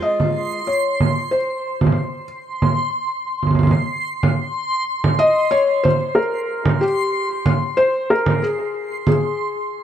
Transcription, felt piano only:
0.02 D#5
0.67 C#5
1.31 C5
5.19 D#5
5.51 C#5
5.84 C5
6.15 A#4
6.81 G4
7.77 C5
8.10 A#4
8.42 G#4
9.07 G#4

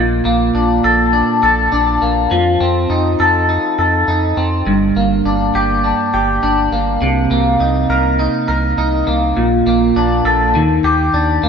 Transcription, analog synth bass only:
Already playing: A#1
0.25 A#1
0.55 A#1
0.84 A#1
1.43 A#1
1.73 A#1
2.02 A#1
2.32 F2
2.61 F2
2.90 F2
3.20 F2
3.79 F2
4.08 F2
4.37 F2
4.66 G1
4.96 G1
5.25 G1
5.55 G1
6.14 G1
6.43 G1
6.72 G1
7.01 C2
7.31 C2
7.60 C2
7.90 C2
8.49 C2
8.78 C2
9.08 C2
9.37 A#1
9.67 A#1
9.96 A#1
10.25 A#1
10.54 D#2
10.84 D#2
11.14 D#2
11.43 D#2

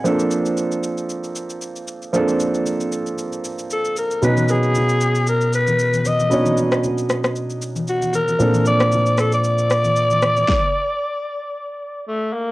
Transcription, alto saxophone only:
3.72 A4
3.98 A#4
4.24 B4
4.51 G#4
5.29 A#4
5.55 B4
6.07 D#5
7.89 F#4
8.15 A#4
8.67 D5
9.20 A4
9.34 D5
12.07 A3
12.33 A#3

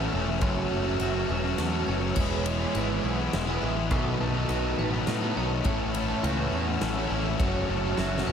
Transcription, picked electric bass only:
0.13 E1
0.42 F#1
0.71 F#1
1.00 F#1
1.29 E1
1.58 E2
1.87 F#1
2.17 E1
2.75 G#1
3.04 B1
3.34 E1
3.62 A1
3.91 B1
4.20 B1
4.49 B1
4.78 A1
5.07 A2
5.37 B1
5.65 A1
6.23 C#2
6.52 E2
6.81 A1
7.10 A1
7.40 F#1
7.69 F#1
7.98 F#1
8.27 E1

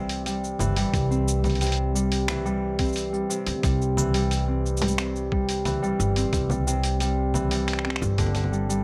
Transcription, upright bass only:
Already playing: C2
0.60 G1
0.94 C2
3.47 D2
3.64 C2
6.00 G1
6.33 C2
8.02 G1

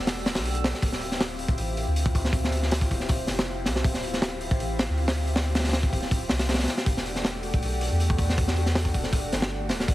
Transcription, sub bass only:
Already playing: E1
0.27 D1
0.36 B1
0.82 D1
1.59 A1
1.87 D2
2.91 D1
3.28 F1
3.66 C2
3.84 D1
4.60 A1
4.89 D2
5.93 D1
6.30 C2
6.86 E1
7.62 B1
7.91 E2
8.95 E1
9.32 G1
9.70 D1
9.88 E1

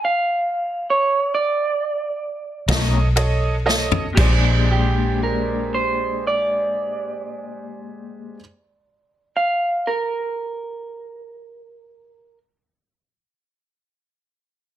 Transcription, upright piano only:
2.69 A4 C#5 D#5
3.16 A4 C#5 D#5
3.66 A4 C#5 D#5
4.15 G#3 G4
4.19 C5 D5

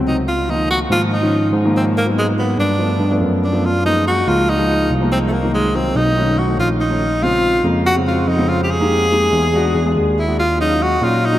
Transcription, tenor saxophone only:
0.07 D#4
0.28 F4
0.50 D#4
0.70 F#4
0.92 F4
1.13 D#4
1.76 C4
1.97 A#3
2.18 G#3
2.39 B3
2.60 D4
3.44 D4
3.66 F4
3.86 D#4
4.07 F#4
4.28 F4
4.49 D#4
5.12 C4
5.28 A3
5.33 A#3
5.54 G#3
5.75 C4
5.96 D#4
6.38 F#4
6.60 F4
6.80 D#4
7.23 F4
7.86 F#4
8.08 F4
8.28 D#4
8.49 F4
8.63 G4
8.71 G#4
10.18 E4
10.39 F4
10.61 D#4
10.82 F#4
11.03 F4
11.25 D#4

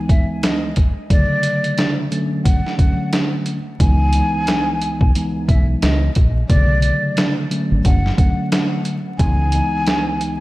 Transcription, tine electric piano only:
Already playing: C#2 E3 G#3 B3 D#4
1.11 C#3 D3 F#3 A3
2.11 D3 F#3 A3 C#4
2.78 D3 F#3 A3 C#4
3.80 C#2 E3 G#3 B3 D#4
4.15 C#2 E3 G#3 B3 D#4
5.15 C#2 E3 G#3 B3 D#4
6.50 C#3 D3 F#3 A3
7.51 D3 F#3 A3 C#4
8.17 D3 F#3 A3 C#4
9.19 C#2 E3 G#3 B3 D#4
9.54 C#2 E3 G#3 B3 D#4

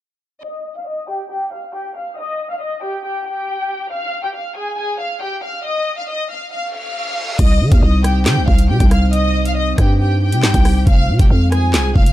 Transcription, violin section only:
0.43 D#5 D#6
0.76 F5 F6
0.87 D#5 D#6
1.09 G4 G5
1.30 G4 G5
1.52 F5 F6
1.74 G4 G5
1.96 F5 F6
2.17 D#5 D#6
2.50 F5 F6
2.61 D#5 D#6
2.82 G4 G5
3.04 G4 G5
3.26 G4 G5
3.91 F5 F6
4.24 G4 G5
4.35 F5 F6
4.56 G#4 G#5
4.78 G#4 G#5
5.00 F5 F6
5.22 G4 G5
5.43 F5 F6
5.65 D#5 D#6
5.97 F5 F6
6.08 D#5 D#6
6.30 F5 F6
6.52 F5 F6
6.74 F5 F6
7.39 D#5 D#6
7.72 F5 F6
7.83 D#5 D#6
8.04 G4 G5
8.26 G4 G5
8.48 F5 F6
8.69 G4 G5
8.91 F5 F6
9.13 D#5 D#6
9.45 F5 F6
9.56 D#5 D#6
9.78 G4 G5
10.00 G4 G5
10.21 G4 G5
10.87 F5 F6
11.19 G4 G5
11.30 F5 F6
11.52 G#4 G#5
11.74 G#4 G#5
11.96 F5 F6

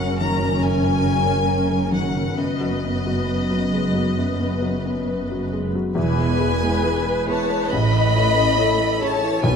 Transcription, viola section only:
Already playing: C#4 A#4
2.38 B3 B4
5.97 E3 B4
6.18 G#3
6.39 B3
6.62 G#3
6.84 E3
7.07 G#3
7.28 B3
7.49 G#3
7.70 C#3
7.94 E3
8.16 A3
8.35 C#4
8.58 A3 A4
8.78 E3
9.02 C#3
9.23 E3
9.45 F#3 F#4

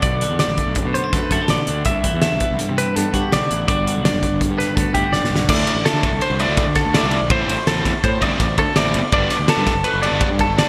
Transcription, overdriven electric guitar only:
5.50 D3 A3 D4 E4
5.85 D3 A3 D4 E4
6.40 D3 A3 D4 E4
6.94 D3 A3 D4 E4
7.31 E3 A3 C4 E4
7.68 E3 A3 C4 E4
8.21 E3 A3 C4 E4
8.76 E3 A3 C4 E4
9.13 D3 G3 B3 D4
9.48 D3 G3 B3 D4
10.03 D3 G3 B3 D4
10.58 D3 G3 B3 D4

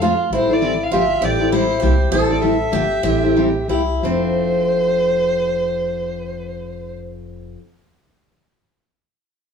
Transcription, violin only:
Already playing: F5
0.34 C5
0.54 D5
0.83 F5
0.96 E5
1.25 D5
1.55 C5
2.15 C5
2.32 D5
2.44 E5
4.05 C5

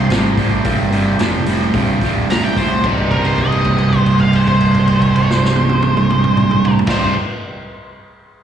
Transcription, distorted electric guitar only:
0.10 C2 A2
0.38 C2 A2
0.64 C2 G2
0.91 C2 G2
1.19 C2 A2
1.47 C2 A2
1.74 C2 G2
2.02 C2 G2
2.30 C2 A2
2.57 C2 A2
2.84 C2 G2 C3 G3 D#4
6.86 C2 G2 C3 G3
6.91 D#4

